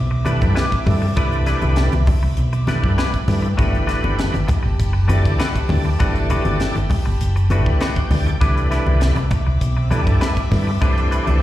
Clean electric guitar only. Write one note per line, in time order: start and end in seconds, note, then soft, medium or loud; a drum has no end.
0.11 muted clean electric guitar stroke soft
0.25 0.41 G3 medium
0.25 0.40 D4 medium
0.25 0.40 E4 medium
0.25 0.39 B4 medium
0.41 muted clean electric guitar stroke soft
0.55 0.74 G3 medium
0.55 0.74 D4 medium
0.55 0.75 E4 medium
0.55 0.75 B4 medium
0.86 muted clean electric guitar stroke soft
1.02 muted clean electric guitar stroke soft
1.17 1.35 G3 medium
1.17 1.36 D4 medium
1.17 1.36 E4 medium
1.17 1.36 B4 medium
1.46 1.62 G3 medium
1.46 1.62 D4 medium
1.46 1.61 E4 medium
1.46 1.61 B4 loud
1.62 1.75 D4 soft
1.62 1.75 E4 medium
1.62 1.76 B4 medium
1.76 muted clean electric guitar stroke soft
1.93 muted clean electric guitar stroke soft
2.07 muted clean electric guitar stroke soft
2.23 muted clean electric guitar stroke soft
2.53 muted clean electric guitar stroke soft
2.68 2.83 G3 medium
2.68 2.83 D4 medium
2.68 2.83 E4 medium
2.68 2.82 B4 medium
2.83 muted clean electric guitar stroke medium
2.98 3.16 G3 medium
2.98 3.17 D4 medium
2.98 3.17 E4 medium
2.98 3.17 B4 medium
3.28 muted clean electric guitar stroke soft
3.42 muted clean electric guitar stroke soft
3.57 3.76 A3 medium
3.57 3.77 D4 medium
3.57 3.77 F#4 medium
3.57 3.77 B4 loud
3.87 4.03 A3 medium
3.87 4.03 D4 medium
3.87 4.02 F#4 medium
3.87 4.01 B4 medium
4.03 4.17 D4 medium
4.03 4.17 F#4 medium
4.03 4.17 B4 medium
4.18 muted clean electric guitar stroke soft
4.33 muted clean electric guitar stroke soft
4.47 muted clean electric guitar stroke soft
4.63 muted clean electric guitar stroke soft
4.93 muted clean electric guitar stroke soft
5.08 5.24 A3 medium
5.08 5.23 D4 medium
5.08 5.23 F#4 medium
5.08 5.22 B4 medium
5.24 muted clean electric guitar stroke soft
5.39 5.58 A3 medium
5.39 5.58 D4 medium
5.39 5.58 F#4 medium
5.39 5.58 B4 medium
5.69 muted clean electric guitar stroke soft
5.85 muted clean electric guitar stroke soft
5.99 6.18 A3 medium
5.99 6.18 D4 medium
5.99 6.18 F#4 loud
5.99 6.18 B4 medium
6.30 6.46 A3 medium
6.30 6.45 D4 medium
6.30 6.45 F#4 medium
6.30 6.44 B4 medium
6.45 6.59 D4 soft
6.45 6.59 F#4 medium
6.45 6.59 B4 medium
6.60 muted clean electric guitar stroke soft
6.76 muted clean electric guitar stroke soft
6.90 muted clean electric guitar stroke soft
7.06 muted clean electric guitar stroke soft
7.36 muted clean electric guitar stroke soft
7.51 7.66 A3 medium
7.51 7.66 D4 medium
7.51 7.66 F#4 medium
7.51 7.65 B4 medium
7.66 muted clean electric guitar stroke soft
7.81 7.99 A3 medium
7.81 7.99 D4 medium
7.81 7.99 F#4 medium
7.81 8.00 B4 medium
8.11 muted clean electric guitar stroke soft
8.27 muted clean electric guitar stroke soft
8.41 8.59 G3 medium
8.41 8.59 D4 medium
8.41 8.60 E4 medium
8.41 8.60 B4 medium
8.71 8.86 G3 medium
8.71 8.86 D4 medium
8.71 8.86 E4 loud
8.71 8.85 B4 medium
8.86 9.00 D4 soft
8.86 9.00 E4 medium
8.86 9.01 B4 medium
9.01 muted clean electric guitar stroke soft
9.17 muted clean electric guitar stroke medium
9.31 muted clean electric guitar stroke soft
9.47 muted clean electric guitar stroke soft
9.77 muted clean electric guitar stroke soft
9.91 10.07 G3 medium
9.91 10.07 D4 medium
9.91 10.07 E4 medium
9.91 10.06 B4 medium
10.07 muted clean electric guitar stroke soft
10.21 10.40 G3 medium
10.21 10.40 D4 medium
10.21 10.40 E4 medium
10.21 10.40 B4 medium
10.51 muted clean electric guitar stroke soft
10.67 muted clean electric guitar stroke soft
10.81 11.00 G3 medium
10.81 11.00 D4 medium
10.81 11.00 E4 medium
10.81 11.01 B4 medium
11.11 11.27 G3 medium
11.11 11.27 D4 medium
11.11 11.26 E4 medium
11.11 11.25 B4 loud
11.27 11.41 D4 soft
11.27 11.41 E4 medium
11.27 11.41 B4 medium